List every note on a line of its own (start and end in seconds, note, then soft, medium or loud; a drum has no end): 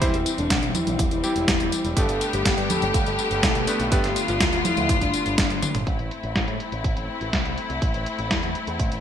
0.00 0.12 E1 loud
0.00 1.93 E3 medium
0.00 5.83 G3 medium
0.00 0.14 G3 loud
0.00 1.93 C4 medium
0.00 0.14 C4 loud
0.00 0.31 E4 loud
0.00 0.14 E4 medium
0.00 0.14 C5 loud
0.00 kick loud
0.00 closed hi-hat medium
0.00 tambourine soft
0.14 0.24 E1 medium
0.14 closed hi-hat soft
0.14 tambourine soft
0.26 closed hi-hat medium
0.26 tambourine medium
0.38 0.48 E1 medium
0.38 0.67 D4 loud
0.38 closed hi-hat soft
0.38 tambourine soft
0.50 0.60 B1 loud
0.50 kick loud
0.50 snare loud
0.50 closed hi-hat medium
0.50 tambourine soft
0.63 0.73 B1 medium
0.63 closed hi-hat soft
0.63 tambourine soft
0.75 1.04 E4 loud
0.75 closed hi-hat medium
0.75 tambourine medium
0.75 high conga medium
0.87 0.97 B1 medium
0.87 closed hi-hat soft
0.87 tambourine soft
0.87 high conga medium
0.99 1.09 E1 loud
0.99 kick loud
0.99 closed hi-hat medium
0.99 tambourine soft
1.11 1.21 E1 medium
1.11 1.87 E4 loud
1.11 closed hi-hat soft
1.11 tambourine soft
1.24 1.94 G3 medium
1.24 1.94 C4 medium
1.24 1.94 E4 medium
1.24 1.94 G4 loud
1.24 tambourine medium
1.36 1.46 E1 medium
1.36 closed hi-hat soft
1.36 tambourine soft
1.48 1.58 E1 loud
1.48 kick loud
1.48 snare loud
1.48 closed hi-hat loud
1.48 tambourine soft
1.60 1.70 E1 medium
1.60 closed hi-hat soft
1.60 tambourine soft
1.72 closed hi-hat medium
1.72 tambourine medium
1.84 1.95 E1 medium
1.84 closed hi-hat soft
1.84 tambourine soft
1.97 2.07 G1 loud
1.97 5.83 D3 medium
1.97 5.83 A3 medium
1.97 3.65 A3 medium
1.97 5.83 B3 medium
1.97 3.65 B3 medium
1.97 3.65 D4 medium
1.97 3.90 G4 medium
1.97 3.65 G4 medium
1.97 2.26 A4 loud
1.97 kick loud
1.97 closed hi-hat medium
1.97 tambourine soft
2.09 2.19 G1 medium
2.09 closed hi-hat soft
2.09 tambourine soft
2.21 closed hi-hat medium
2.21 tambourine medium
2.33 2.43 G1 medium
2.33 2.62 G4 loud
2.33 closed hi-hat soft
2.33 tambourine soft
2.45 2.56 G1 loud
2.45 kick loud
2.45 snare loud
2.45 closed hi-hat medium
2.45 tambourine soft
2.58 2.68 G2 medium
2.58 closed hi-hat soft
2.58 tambourine soft
2.70 2.99 A4 loud
2.70 closed hi-hat medium
2.70 tambourine medium
2.70 high conga medium
2.82 2.92 G1 medium
2.82 closed hi-hat soft
2.82 tambourine soft
2.94 3.04 G1 loud
2.94 kick loud
2.94 closed hi-hat medium
2.94 tambourine soft
3.06 3.17 G1 medium
3.06 3.82 A4 loud
3.06 closed hi-hat soft
3.06 tambourine soft
3.19 tambourine medium
3.31 3.41 G1 medium
3.31 closed hi-hat soft
3.31 tambourine soft
3.43 3.53 B1 loud
3.43 kick loud
3.43 snare loud
3.43 closed hi-hat medium
3.43 tambourine soft
3.55 3.65 B1 medium
3.55 closed hi-hat soft
3.55 tambourine soft
3.67 3.89 A3 medium
3.67 3.89 B3 medium
3.67 3.89 D4 medium
3.67 3.89 B4 loud
3.67 closed hi-hat medium
3.67 tambourine medium
3.80 3.90 B1 medium
3.80 closed hi-hat soft
3.80 tambourine soft
3.92 4.02 G1 loud
3.92 4.05 A3 loud
3.92 4.05 B3 loud
3.92 4.05 D4 medium
3.92 5.85 F4 medium
3.92 4.21 G4 loud
3.92 4.05 B4 loud
3.92 kick loud
3.92 closed hi-hat medium
3.92 tambourine soft
4.04 4.14 G1 medium
4.04 snare soft
4.04 closed hi-hat soft
4.04 tambourine soft
4.16 closed hi-hat medium
4.16 tambourine medium
4.28 4.38 G1 medium
4.28 4.58 F4 loud
4.28 closed hi-hat soft
4.28 tambourine soft
4.41 4.51 D2 loud
4.41 kick loud
4.41 snare loud
4.41 closed hi-hat loud
4.41 tambourine soft
4.53 4.63 D2 medium
4.53 closed hi-hat soft
4.53 tambourine soft
4.65 4.94 E4 loud
4.65 closed hi-hat medium
4.65 tambourine medium
4.65 high conga medium
4.77 4.87 D2 medium
4.77 closed hi-hat soft
4.77 tambourine soft
4.77 high conga medium
4.89 4.99 G1 loud
4.89 kick loud
4.89 closed hi-hat medium
4.89 tambourine soft
5.01 5.12 G1 medium
5.01 5.77 D4 loud
5.01 kick medium
5.01 closed hi-hat soft
5.01 tambourine soft
5.14 closed hi-hat soft
5.14 tambourine medium
5.26 5.36 G1 medium
5.26 closed hi-hat soft
5.26 tambourine soft
5.38 5.48 G1 loud
5.38 kick loud
5.38 snare loud
5.38 closed hi-hat loud
5.38 tambourine soft
5.50 5.60 G1 medium
5.50 closed hi-hat soft
5.50 high tom medium
5.50 tambourine soft
5.62 closed hi-hat medium
5.62 mid tom medium
5.62 tambourine medium
5.75 5.85 G1 medium
5.75 closed hi-hat soft
5.75 mid tom medium
5.75 tambourine soft
5.87 5.97 A1 medium
5.87 9.00 A3 medium
5.87 9.00 C4 medium
5.87 9.00 E4 medium
5.87 kick loud
5.87 closed hi-hat medium
5.99 6.09 A1 medium
5.99 closed hi-hat soft
6.11 closed hi-hat medium
6.23 6.34 A1 medium
6.23 closed hi-hat soft
6.36 6.46 A1 loud
6.36 kick medium
6.36 snare loud
6.36 closed hi-hat medium
6.48 6.58 A2 medium
6.48 closed hi-hat soft
6.60 closed hi-hat medium
6.72 6.82 A1 medium
6.72 closed hi-hat soft
6.84 6.95 A1 medium
6.84 kick loud
6.84 closed hi-hat medium
6.97 7.07 A1 medium
6.97 closed hi-hat soft
7.21 7.31 A1 medium
7.21 closed hi-hat soft
7.33 7.43 C2 loud
7.33 kick loud
7.33 snare loud
7.33 closed hi-hat medium
7.45 7.56 C2 medium
7.45 closed hi-hat soft
7.58 closed hi-hat medium
7.70 7.80 C2 medium
7.70 closed hi-hat soft
7.82 7.92 A1 medium
7.82 kick loud
7.82 closed hi-hat medium
7.94 8.04 A1 medium
7.94 closed hi-hat soft
8.06 closed hi-hat medium
8.19 8.29 A1 medium
8.19 closed hi-hat soft
8.31 8.41 E2 loud
8.31 kick loud
8.31 snare loud
8.31 closed hi-hat medium
8.43 8.53 E2 medium
8.43 closed hi-hat soft
8.55 closed hi-hat medium
8.67 8.78 E2 medium
8.67 closed hi-hat soft
8.79 8.90 A1 medium
8.79 kick loud
8.79 closed hi-hat medium
8.92 9.00 A1 medium
8.92 closed hi-hat soft